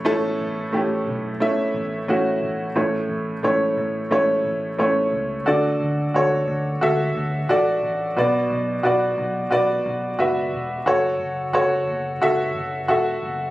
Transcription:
X:1
M:4/4
L:1/16
Q:1/4=89
K:D
V:1 name="Upright piano"
[A,CEA]4 [A,CEG]4 [A,CEe]4 [A,CEF]4 | [A,CEc]4 [A,CEc]4 [A,CEc]4 [A,CEc]4 | [FAd]4 [FAc]4 [FAe]4 [FAd]4 | [FBd]4 [FBd]4 [FBd]4 [FBe]4 |
[FAc]4 [FAc]4 [FAe]4 [FAe]4 |]
V:2 name="Upright piano" clef=bass
A,,6 z8 z2 | A,,6 z8 z2 | D,6 z8 z2 | B,,6 z8 z2 |
z16 |]
V:3 name="Picked electric bass" clef=bass
A,,,2 A,,,2 A,,,2 B,,,3 z A,,,2 A,,,2 A,,,2 | A,,,2 A,,,2 A,,,2 A,,,2 A,,,2 A,,,2 A,,,2 C,,2 | D,,2 D,,2 D,,2 D,,2 D,,2 D,,2 A,,,2 A,,,2 | B,,,2 B,,,2 B,,,2 B,,,2 B,,,2 B,,,2 F,,,2 E,,,2 |
F,,,2 F,,,2 F,,,2 F,,,2 F,,,2 F,,,2 E,,,2 F,,,2 |]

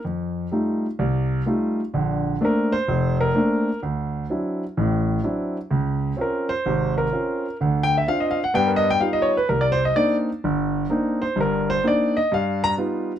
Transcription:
X:1
M:4/4
L:1/16
Q:"Swing" 1/4=127
K:Cm
V:1 name="Grand piano"
z16 | z4 B2 c4 B6 | z16 | z4 B2 c4 B6 |
z2 g =e f _e f ^f g B ^d g =f d _d =B | B d c e d2 z8 c2 | B2 c2 d2 e2 f2 b2 z4 |]
V:2 name="Grand piano"
F,,4 [G,=A,EF]2 z2 C,,4 [G,A,EF]2 z2 | [B,,,D,]4 [=A,B,CD]2 z2 F,,,4 [A,B,CD]2 z2 | D,,4 [^F,CD=E]2 z2 [=A,,,=A,,]4 [F,CDE]2 z2 | _D,,4 [C_DF]2 z2 [A,,,C,]4 [CDF]2 z2 |
[D,,D,]4 [CDF]2 z2 [G,,=B,]4 [G,B,^DF]2 z2 | C,,4 [B,CDE]2 z2 G,,,4 [B,CDE]2 z2 | [G,,,G,,]4 [B,CDE]2 z2 G,,4 [G,=B,^DF]2 z2 |]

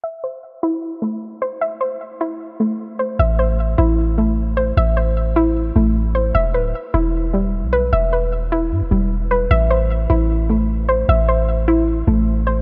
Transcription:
X:1
M:4/4
L:1/16
Q:1/4=152
K:Ador
V:1 name="Synth pluck"
e2 c4 E4 A,4 c2 | e2 c4 E4 A,4 c2 | e2 c4 E4 A,4 c2 | e2 c4 E4 A,4 c2 |
e2 B4 E4 G,4 B2 | e2 B4 E4 G,4 B2 | e2 c4 E4 A,4 c2 | e2 c4 E4 A,4 c2 |]
V:2 name="808-style bass" clef=bass
z16 | z16 | A,,,6 A,,,8- A,,,2 | A,,,8- A,,,2 A,,,6 |
E,,,2 D,,,2 z2 E,,,6- E,,, B,,,3 | E,,,8 G,, E,,, E,,,6 | A,,,6 A,,,8- A,,,2 | A,,,8- A,,,2 A,,,6 |]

